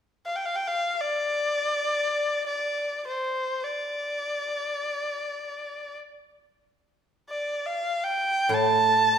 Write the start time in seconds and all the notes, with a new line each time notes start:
0.26 F5
0.36 G5
0.45 F5
0.56 G5
0.67 F5
1.01 D5
2.47 D5
3.08 C5
3.64 D5
7.30 D5
7.66 F5
8.04 G5
8.49 A2
8.54 A5